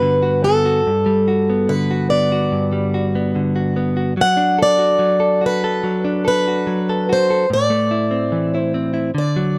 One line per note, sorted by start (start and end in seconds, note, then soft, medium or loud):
0.00 0.86 G2 medium
0.00 0.81 D3 soft
0.00 0.81 G3 soft
0.00 0.43 B3 soft
0.00 0.22 F#4 soft
0.00 0.86 G4 soft
0.00 0.47 B4 medium
0.23 0.65 F#4 soft
0.44 0.81 B3 soft
0.44 1.73 A4 medium
0.65 0.90 F#4 soft
0.87 2.51 G2 soft
1.06 2.71 G3 soft
1.28 1.90 F#4 soft
1.50 2.11 B3 soft
1.69 3.34 D3 medium
1.69 2.10 B4 medium
1.91 2.32 F#4 soft
2.10 3.14 B3 soft
2.10 3.31 D5 medium
2.32 2.93 F#4 soft
2.52 4.18 G2 medium
2.72 4.13 G3 soft
2.94 3.54 F#4 soft
3.15 3.75 B3 soft
3.35 4.13 D3 soft
3.56 3.95 F#4 soft
3.76 4.13 B3 soft
3.97 4.13 F#4 soft
4.17 4.98 F#3 medium
4.21 4.58 F#5 medium
4.37 6.03 D4 soft
4.59 5.19 A4 medium
4.59 5.46 D5 medium
4.79 5.40 F#4 soft
4.99 5.82 F#3 medium
5.20 5.64 A4 soft
5.41 6.46 F#4 soft
5.46 6.27 B4 medium
5.64 6.23 A4 medium
5.84 6.66 F#3 medium
6.05 7.45 D4 medium
6.25 6.87 A4 medium
6.25 7.05 B4 medium
6.48 7.08 F#4 soft
6.67 7.45 F#3 soft
6.89 7.29 A4 soft
7.09 7.45 F#4 medium
7.09 7.49 C5 medium
7.30 7.45 A4 medium
7.50 9.11 A2 soft
7.50 8.59 D5 medium
7.70 9.10 A3 soft
7.91 8.53 E4 soft
8.11 8.73 C4 soft
8.32 9.10 E3 soft
8.54 8.92 E4 soft
8.59 9.13 C5 medium
8.74 9.11 C4 soft
8.94 9.10 E4 soft
9.15 9.58 D3 medium
9.15 9.58 D5 medium
9.36 9.58 F#3 medium